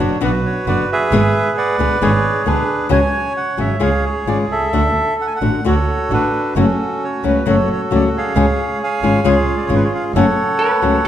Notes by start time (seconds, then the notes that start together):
Already playing: D4 F#4
0.00 F#1 B2 D3 B3 D4 F#4 C#5
0.21 B1 B2 D3 B3 D4 F#4 B4 D5
0.46 C#5
0.66 F#1 B2 D3 B3 D4 F#4 D5
0.92 G#4 B4 E5
1.11 G#1 B2 D3 G#3 B3 G#4
1.58 B4 D5 F#5
1.78 D2 B2 D3 G#3 B3 G#4
1.99 G#1 B2 D3 G#3 B3 G#4 C#5
2.45 D2 B2 D3 G#3 B3 D4 G#4 B4
2.89 C#2 C#3 F#3 C#4 F#4 G#4 C#5 G#5
3.37 F#5
3.57 G#1 C#3 F#3 C#4 F#4 G#4 E5
3.80 C#2 C#3 G#3 C#4 F4 G#4 C#5 F5
4.06 C#5
4.25 G#1 C#3 G#3 C#4 F4 G#4 D5
4.49 C2 A4 E5
4.72 D2 D3 A3 D4 F#4
5.21 F#5
5.27 G#5
5.36 F#5
5.41 A1 D3 A3 D4 F#4
5.65 D2 D3 A3 D4 F#4 A4 C#5
6.10 A1 D3 A3 D4 F#4
6.14 B4
6.56 F#1 C#3 F#3 A3 C#4 F#4 A4
7.04 C#5
7.24 C#2 C#3 F#3 A3 C#4 F#4
7.28 B4
7.46 F#1 C#3 F#3 A3 C#4 F#4 A4
7.50 C#5
7.72 C#5
7.91 C#2 C#3 F#3 A3 C#4 F#4
7.95 D5
8.17 G#4 C#5 F5
8.35 C#2 C#3 G#3 C#4 F4 G#4
8.83 C#5 F5 G#5
9.02 G#1 C#3 G#3 C#4 F4 G#4
9.24 C#2 C#3 G#3 C#4 F4 G#4
9.28 C#5
9.57 D5
9.66 G#1 C#3 G#3 C#4 F4 G#4 C#5
9.75 B4
9.85 C#5
9.95 F5
10.14 F#1 C#3 F#3 A3 C#4 F#4 A4 C#5 F#5
10.59 B4
10.82 C#2 C#3 F#3 A3 C#4 F#4